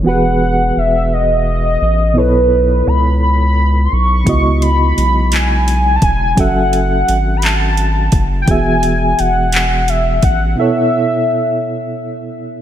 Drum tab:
HH |------|------|xxxxxx|xxxxxx|
CP |------|------|---x--|---x--|
BD |------|------|o----o|o----o|

HH |xxxxxx|------|
CP |---x--|------|
BD |o----o|------|